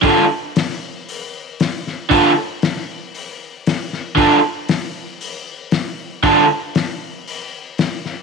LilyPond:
<<
  \new Staff \with { instrumentName = "Overdriven electric guitar" } { \time 4/4 \key d \minor \tempo 4 = 116 <d d' f' a'>8 r2. r8 | <d d' f' a'>8 r2. r8 | <d d' f' a'>8 r2. r8 | <d d' f' a'>8 r2. r8 | }
  \new DrumStaff \with { instrumentName = "Drums" } \drummode { \time 4/4 <hho bd>4 <hho sn>16 sn8. hho4 <hho sn>8 sn8 | <hho bd>4 <hho sn>16 sn8. hho4 <hho sn>8 sn8 | <hho bd>4 <hho sn>4 hho4 <hho sn>4 | <hho bd>4 <hho sn>4 hho4 <hho sn>8 sn8 | }
>>